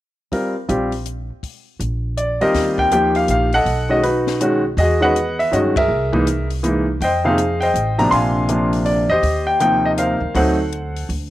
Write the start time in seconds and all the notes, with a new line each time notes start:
0.32 G3 C4 F4 A#4, kick, open hi-hat
0.68 A#1 G3 C4 F4 G4, closed hi-hat
0.92 open hi-hat
1.06 closed hi-hat
1.43 kick, open hi-hat
1.80 A#1, closed hi-hat
2.17 D5, closed hi-hat
2.41 D#2 G3 C4 F4 G4 A#4 C5 D#5, open hi-hat
2.54 D#2, kick, snare, open hi-hat
2.78 G5, kick
2.92 F3 A#3 D#4 G4 G5, closed hi-hat
3.15 F5, open hi-hat
3.28 A#1 F5, closed hi-hat
3.53 A4 D#5 F#5, open hi-hat
3.65 B1, kick, open hi-hat
3.89 D#3 G#3 C#4 F#4 D#5
4.03 D#4 F#4 B4, open hi-hat
4.27 snare
4.41 D#3 G#3 C#4 F#4, closed hi-hat
4.77 E2 F#4 G#4 D#5, kick, open hi-hat
5.01 D#3 G#3 C#4 F#4 B4 D#5 F#5
5.16 closed hi-hat
5.39 E5, open hi-hat
5.51 G2 D#3 G#3 C#4 F#4 D#5, closed hi-hat
5.76 G#4 A#4 E5, kick, ride
5.88 C2
6.12 E3 G#3 A#3 D#4, kick
6.27 closed hi-hat
6.50 open hi-hat
6.63 E3 G#3 A#3 D#4, closed hi-hat
7.01 F2 C5 D#5 G5, kick, open hi-hat
7.24 C3 F3 A#3 D#4 G#4 C5 F5
7.38 closed hi-hat
7.60 C5 D#5 G5, open hi-hat
7.74 A1, closed hi-hat
7.98 C3 F3 A#3 D4 A#5, open hi-hat
8.11 A#1 F5 G#5 C6, kick, open hi-hat
8.48 C3 F3 A#3 D4, closed hi-hat
8.73 open hi-hat
8.85 D5, open hi-hat
9.09 E2 G4 C5 D#5
9.23 D#2, kick, open hi-hat
9.47 G5
9.59 C3 F3 A#3 D#4 G5, closed hi-hat
9.85 D#5
9.98 A#4 C5 F5, closed hi-hat
10.20 D#2
10.34 D2 F#3 A3 C4 D#4 A4 C5 F#5, kick, open hi-hat
10.73 closed hi-hat
10.96 open hi-hat
11.09 D2, open hi-hat